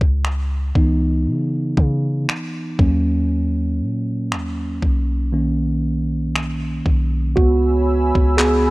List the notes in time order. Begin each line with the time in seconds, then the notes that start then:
0.01 C#2, kick
0.25 finger snap
0.76 C#2 E3 B3 D#4, kick
1.27 C#3
1.77 C#3, kick
2.29 finger snap
2.79 D#2 F#3 A#3 C#4, kick
3.81 A#2
4.32 D#2, finger snap
4.82 B1, kick
5.33 D#3 A#3 C#4
6.36 finger snap
6.86 B1, kick
7.36 C#2 B3 F#4 C#5 G#5 B5 E6, kick
8.15 C#2, kick
8.37 B3 G#4, clap